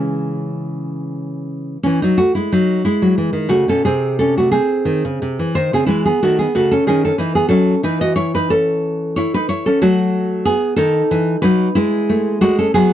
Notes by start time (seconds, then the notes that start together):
Already playing: C#3 E3 G#3 C#4
1.83 E3 C#4
2.02 F#3 D#4
2.18 A3 F#4
2.35 G#3 E4
2.52 F#3 D#4
2.85 G#3 E4
3.02 F#3
3.18 E3
3.33 D#3
3.49 C#3 A3 F#4
3.68 B2 C#4 A4
3.85 C3 C4 G#4
4.19 C#4 A4
4.37 A3 F#4
4.51 C4 G#4
4.85 D#3
5.05 C#3
5.22 C3
5.39 E3
5.55 D#3 D#4 C5
5.73 C#3 C4 G#4
5.86 E3 G#3 E4
6.05 B3 G#4
6.23 D#3 A3 F#4
6.39 B3 G#4
6.55 C#3 A3 F#4
6.71 C#4 A4
6.87 D#3 C#4 G#4
7.05 C#4 A4
7.18 E3 D#4 B4
7.35 B3 G#4
7.49 F#3 C#4 A4
7.83 E3 D#4 B4
8.01 F#4 D#5
8.16 E4 C#5
8.35 D#4 B4
8.50 C#4 A4
9.16 E4 C#5
9.34 D#4 B4
9.49 E4 C#5
9.66 C#4 A4
9.82 F#3 A3 F#4
10.45 B3 G#4
10.76 D#3 D#4 A4
11.11 E3
11.42 F#3 D#4 B4
11.75 G#3 E4
12.09 A3
12.41 G#3 A3 F#4
12.59 C#4 A4
12.74 F#3 B3 G#4